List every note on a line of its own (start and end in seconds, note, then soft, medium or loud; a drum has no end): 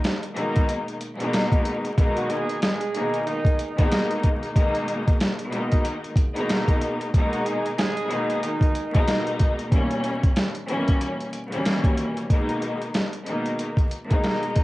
0.00 0.15 B2 loud
0.00 0.16 D#3 medium
0.00 0.16 G#3 medium
0.00 0.16 A#3 loud
0.00 0.16 D#4 loud
0.04 snare loud
0.04 closed hi-hat medium
0.23 closed hi-hat medium
0.35 0.96 B2 loud
0.35 0.96 D#3 loud
0.35 0.97 G#3 medium
0.35 0.97 A#3 medium
0.35 0.97 D#4 loud
0.35 closed hi-hat medium
0.56 kick medium
0.56 closed hi-hat medium
0.69 closed hi-hat loud
0.88 closed hi-hat soft
1.01 closed hi-hat medium
1.19 1.92 B2 loud
1.19 1.92 D#3 medium
1.19 1.92 G#3 loud
1.19 1.93 A#3 medium
1.19 1.93 D#4 loud
1.19 closed hi-hat medium
1.34 snare loud
1.34 closed hi-hat medium
1.52 kick loud
1.52 closed hi-hat soft
1.65 closed hi-hat medium
1.85 closed hi-hat medium
1.97 2.73 B2 loud
1.97 2.74 D#3 medium
1.97 2.74 G#3 loud
1.97 2.74 A#3 loud
1.97 2.74 D#4 loud
1.97 kick loud
1.97 closed hi-hat medium
2.16 2.27 F#3 medium
2.16 2.27 F#4 medium
2.16 closed hi-hat medium
2.30 2.56 G#3 loud
2.30 2.56 G#4 loud
2.30 closed hi-hat medium
2.49 closed hi-hat medium
2.62 3.23 G#3 loud
2.62 3.23 G#4 loud
2.62 snare loud
2.62 closed hi-hat medium
2.81 closed hi-hat medium
2.94 3.55 B2 medium
2.94 3.55 D#3 medium
2.94 3.55 G#3 medium
2.94 3.55 A#3 loud
2.94 3.56 D#4 loud
2.94 closed hi-hat medium
3.14 closed hi-hat medium
3.26 3.87 D#3 medium
3.26 3.87 D#4 loud
3.26 closed hi-hat loud
3.45 kick loud
3.45 closed hi-hat soft
3.59 closed hi-hat medium
3.76 4.50 B2 loud
3.76 4.50 D#3 medium
3.76 4.50 G#3 loud
3.76 4.50 A#3 medium
3.76 4.51 D#4 loud
3.76 kick loud
3.76 closed hi-hat medium
3.91 snare loud
3.91 closed hi-hat medium
4.11 closed hi-hat soft
4.23 kick medium
4.23 closed hi-hat medium
4.43 closed hi-hat medium
4.55 5.31 B2 loud
4.55 5.32 D#3 medium
4.55 5.32 G#3 medium
4.55 5.32 A#3 loud
4.55 5.32 D#4 loud
4.55 kick loud
4.55 closed hi-hat medium
4.75 closed hi-hat medium
4.88 closed hi-hat medium
5.08 kick loud
5.08 closed hi-hat medium
5.20 snare loud
5.20 closed hi-hat medium
5.39 closed hi-hat medium
5.51 6.12 B2 loud
5.51 6.12 D#3 loud
5.51 6.13 G#3 medium
5.51 6.13 A#3 loud
5.51 6.13 D#4 loud
5.51 closed hi-hat medium
5.72 kick medium
5.72 closed hi-hat medium
5.85 closed hi-hat loud
6.04 closed hi-hat soft
6.16 kick loud
6.16 closed hi-hat medium
6.35 7.08 B2 loud
6.35 7.08 D#3 medium
6.35 7.08 G#3 loud
6.35 7.09 A#3 medium
6.35 7.09 D#4 loud
6.35 closed hi-hat medium
6.49 snare loud
6.49 closed hi-hat medium
6.68 kick loud
6.68 closed hi-hat medium
6.81 closed hi-hat medium
7.01 closed hi-hat medium
7.14 7.90 B2 loud
7.14 7.90 D#3 medium
7.14 7.91 G#3 medium
7.14 7.91 A#3 medium
7.14 7.91 D#4 loud
7.14 kick loud
7.14 closed hi-hat medium
7.33 7.44 F#3 medium
7.33 7.44 F#4 medium
7.33 closed hi-hat medium
7.45 7.72 G#3 loud
7.45 7.72 G#4 loud
7.45 closed hi-hat medium
7.66 closed hi-hat medium
7.78 8.39 G#3 loud
7.78 8.39 G#4 loud
7.78 snare loud
7.78 closed hi-hat medium
7.97 closed hi-hat medium
8.08 8.70 B2 loud
8.08 8.70 D#3 medium
8.08 8.70 G#3 loud
8.08 8.71 A#3 medium
8.08 8.71 D#4 loud
8.08 closed hi-hat medium
8.30 closed hi-hat medium
8.43 9.04 D#3 medium
8.43 9.04 D#4 loud
8.43 closed hi-hat loud
8.61 kick loud
8.61 closed hi-hat soft
8.75 closed hi-hat medium
8.93 9.66 B2 loud
8.93 9.66 D#3 medium
8.93 9.66 G#3 medium
8.93 9.67 A#3 medium
8.93 9.67 D#4 loud
8.93 kick loud
8.93 closed hi-hat medium
9.08 snare loud
9.08 closed hi-hat medium
9.27 closed hi-hat medium
9.39 kick medium
9.39 closed hi-hat medium
9.59 closed hi-hat medium
9.70 10.47 D#2 loud
9.70 10.47 B2 medium
9.70 10.48 E3 medium
9.70 10.48 G3 loud
9.70 10.48 A#3 medium
9.70 10.48 C#4 loud
9.70 kick loud
9.70 closed hi-hat medium
9.91 closed hi-hat medium
10.04 closed hi-hat medium
10.24 kick loud
10.24 closed hi-hat medium
10.36 snare loud
10.36 closed hi-hat medium
10.55 closed hi-hat medium
10.69 11.29 D#2 loud
10.69 11.29 B2 medium
10.69 11.29 E3 loud
10.69 11.30 G3 medium
10.69 11.30 A#3 loud
10.69 11.30 C#4 loud
10.69 closed hi-hat medium
10.88 kick medium
10.88 closed hi-hat medium
11.01 closed hi-hat loud
11.21 closed hi-hat soft
11.33 closed hi-hat medium
11.51 12.24 D#2 loud
11.51 12.24 B2 medium
11.51 12.24 E3 loud
11.51 12.25 G3 medium
11.51 12.25 A#3 loud
11.51 12.25 C#4 loud
11.51 closed hi-hat medium
11.66 snare loud
11.66 closed hi-hat medium
11.84 kick loud
11.84 closed hi-hat medium
11.97 closed hi-hat medium
12.17 closed hi-hat medium
12.29 13.05 B2 loud
12.29 13.06 D#3 medium
12.29 13.06 G#3 loud
12.29 13.06 A#3 medium
12.29 13.07 D#4 loud
12.29 kick loud
12.29 closed hi-hat medium
12.49 closed hi-hat medium
12.62 closed hi-hat medium
12.82 closed hi-hat medium
12.94 snare loud
12.94 closed hi-hat medium
13.13 closed hi-hat medium
13.26 13.87 B2 medium
13.26 13.87 D#3 medium
13.26 13.87 G#3 medium
13.26 13.87 A#3 medium
13.26 13.88 D#4 loud
13.26 closed hi-hat medium
13.46 closed hi-hat medium
13.59 closed hi-hat loud
13.77 kick medium
13.77 closed hi-hat soft
13.91 closed hi-hat medium
14.08 14.64 B2 medium
14.08 14.64 D#3 medium
14.08 14.64 G#3 medium
14.08 14.64 A#3 medium
14.08 14.64 D#4 loud
14.08 kick medium
14.08 closed hi-hat medium
14.24 snare loud
14.24 closed hi-hat medium
14.43 closed hi-hat soft
14.56 kick medium
14.56 closed hi-hat medium